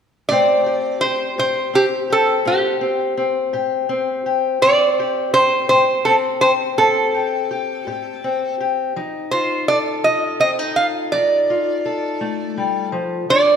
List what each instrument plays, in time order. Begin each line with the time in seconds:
0.29 steel-string acoustic guitar A2 A3 C4 G4 C5, resonator guitar played with a steel bar D5
0.66 steel-string acoustic guitar G4
1.01 steel-string acoustic guitar G4, resonator guitar played with a steel bar C5
1.38 steel-string acoustic guitar A2 G4, resonator guitar played with a steel bar C5
1.74 steel-string acoustic guitar C4, resonator guitar played with a steel bar G4
2.10 steel-string acoustic guitar G4, resonator guitar played with a steel bar A4
2.45 steel-string acoustic guitar A2 C4, resonator guitar played with a steel bar G4
2.81 steel-string acoustic guitar C4
3.17 steel-string acoustic guitar C4
3.53 steel-string acoustic guitar A2 G4
3.89 steel-string acoustic guitar C4
4.26 steel-string acoustic guitar G4
4.62 steel-string acoustic guitar A2 C4, resonator guitar played with a steel bar D5
5.00 steel-string acoustic guitar G4
5.34 steel-string acoustic guitar G4, resonator guitar played with a steel bar C5
5.69 steel-string acoustic guitar A2 G4, resonator guitar played with a steel bar C5
6.05 steel-string acoustic guitar C4, resonator guitar played with a steel bar A4
6.41 steel-string acoustic guitar G4, resonator guitar played with a steel bar C5
6.78 steel-string acoustic guitar A2 C4, resonator guitar played with a steel bar A4
7.14 steel-string acoustic guitar G4
7.51 steel-string acoustic guitar G4
7.87 steel-string acoustic guitar A2 G4
8.24 steel-string acoustic guitar C4
8.60 steel-string acoustic guitar G4
8.96 steel-string acoustic guitar F3 D#4
9.31 steel-string acoustic guitar F4, resonator guitar played with a steel bar C5
9.68 steel-string acoustic guitar A4, resonator guitar played with a steel bar D5
10.04 steel-string acoustic guitar F3 F4, resonator guitar played with a steel bar D#5
10.40 steel-string acoustic guitar C4, resonator guitar played with a steel bar D#5
10.59 steel-string acoustic guitar D#4
10.76 steel-string acoustic guitar F4, resonator guitar played with a steel bar F5
11.12 steel-string acoustic guitar F3 D#4, resonator guitar played with a steel bar D5
11.50 steel-string acoustic guitar F4
11.86 steel-string acoustic guitar A4
12.21 steel-string acoustic guitar A3
12.57 steel-string acoustic guitar G3
12.92 steel-string acoustic guitar F3
13.29 steel-string acoustic guitar E3 D4, resonator guitar played with a steel bar D5